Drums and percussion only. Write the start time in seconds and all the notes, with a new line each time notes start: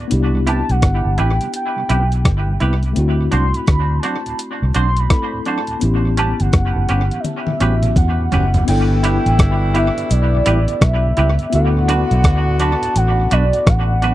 0.11 closed hi-hat
0.47 closed hi-hat
0.69 closed hi-hat
0.82 kick, cross-stick, closed hi-hat
1.18 closed hi-hat
1.41 closed hi-hat
1.54 closed hi-hat
1.90 closed hi-hat
2.12 closed hi-hat
2.25 kick, cross-stick, closed hi-hat
2.60 closed hi-hat
2.83 closed hi-hat
2.96 closed hi-hat
3.32 closed hi-hat
3.54 closed hi-hat
3.67 kick, cross-stick, closed hi-hat
4.03 closed hi-hat
4.26 closed hi-hat
4.39 closed hi-hat
4.74 closed hi-hat
4.97 closed hi-hat
5.10 kick, cross-stick, closed hi-hat
5.45 closed hi-hat
5.67 closed hi-hat
5.81 closed hi-hat
6.17 closed hi-hat
6.40 closed hi-hat
6.53 kick, cross-stick, closed hi-hat
6.89 closed hi-hat
7.11 closed hi-hat
7.24 closed hi-hat, high tom
7.47 high tom
7.60 closed hi-hat
7.83 closed hi-hat, mid tom
7.96 kick, closed hi-hat, mid tom
8.32 closed hi-hat, floor tom
8.54 closed hi-hat, floor tom
8.68 closed hi-hat, crash
9.04 closed hi-hat
9.26 closed hi-hat
9.39 kick, cross-stick, closed hi-hat
9.75 closed hi-hat
9.98 closed hi-hat
10.11 closed hi-hat
10.46 closed hi-hat
10.68 closed hi-hat
10.81 kick, cross-stick, closed hi-hat
11.17 closed hi-hat
11.39 closed hi-hat
11.53 closed hi-hat
11.89 closed hi-hat
12.11 closed hi-hat
12.24 kick, cross-stick, closed hi-hat
12.59 closed hi-hat
12.83 closed hi-hat
12.96 closed hi-hat
13.31 closed hi-hat
13.53 closed hi-hat
13.67 kick, cross-stick, closed hi-hat
14.02 closed hi-hat